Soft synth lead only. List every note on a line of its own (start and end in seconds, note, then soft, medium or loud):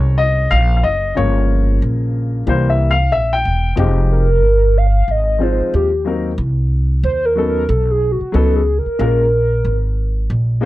4.12 4.79 A#4 loud
4.78 5.12 F5 loud
5.11 5.44 D#5 loud
5.43 5.74 C5 medium
5.75 6.04 G4 medium
7.04 7.27 C5 loud
7.25 7.47 A#4 medium
7.48 7.70 A#4 loud
7.68 7.92 A4 medium
7.91 8.13 G#4 medium
8.12 8.34 F#4 medium
8.33 8.57 A4 medium
8.55 8.80 G#4 medium
8.78 10.41 A#4 loud